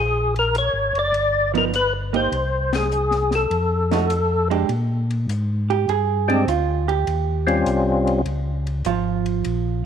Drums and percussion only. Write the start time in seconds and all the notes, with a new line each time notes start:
0.36 ride
0.55 hi-hat pedal, ride
0.95 ride
1.14 ride
1.55 ride
1.74 hi-hat pedal, ride
2.14 ride
2.32 ride
2.73 snare, ride
2.91 hi-hat pedal
3.11 snare
3.31 snare, ride
3.51 ride
3.91 snare, ride
4.10 hi-hat pedal, ride
4.51 ride
4.69 ride
5.11 ride
5.29 hi-hat pedal, ride
5.70 ride
5.89 ride
6.30 ride
6.48 hi-hat pedal, ride
6.89 ride
7.07 ride
7.48 ride
7.66 hi-hat pedal, ride
8.07 ride
8.26 ride
8.67 ride
8.85 hi-hat pedal, ride
9.26 ride
9.44 ride